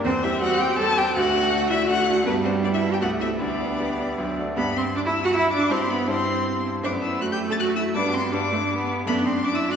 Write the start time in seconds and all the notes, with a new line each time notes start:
0.04 E2 C4 C5
0.23 G3 C4 E4 G4 E5
0.41 G3 C4 F#4 G4 F#5
0.58 G3 C4 G4 G5
0.79 G3 C4 G4 A4 A5
0.96 G3 C4 G4 G5
1.15 D2 A3 F#4 F#5
1.34 A3 D4 F#4
1.52 A3 D4 F#4
1.70 A3 D4 E4 F#4 E5
1.89 A3 D4 F#4 F#5
2.08 A3 D4 F#4
2.25 G2 G3 B3 B4
2.43 B3 C4 D4 G4 C5
2.63 B3 D4 G4 D5
2.72 E4 E5
2.83 B3 D4 G4
2.92 G4 G5
3.00 C2 A3 F#4 F#5
3.20 C4 E4 A4 E5
3.38 D2 B3 D4 D5
3.60 B3 G4 D5
3.80 B3 G4 D5
3.99 B3 G4 D5
4.18 D2 F#3
4.39 A3 F#4 D5
4.57 G2 G3 B3 G4 D5 B5
4.75 C4 C6
4.96 D4 D6
5.06 E4 E6
5.24 F#4 F#6
5.33 E4 E6
5.51 D4 D6
5.70 G2 G3 C4 E4 C5 C6
5.90 B3 B5
6.07 G2 G3 C4 E4 C5 C6
6.83 F#2 A3 B3 D4 C5 D6
7.02 E4 E6
7.21 A3 F#4 F#6
7.32 G4 G6
7.50 A4 A6
7.59 F#4 F#6
7.76 E4 E6
7.95 G2 G3 B3 D4 B4 D6
8.14 C4 C6
8.31 G2 G3 B3 D4 B4 D6
8.51 A3
8.70 B3
9.06 F#2 A3 B3 D4 A4 B5
9.26 C4 C6
9.44 D4 D6
9.54 E4 E6
9.71 F#4 F#6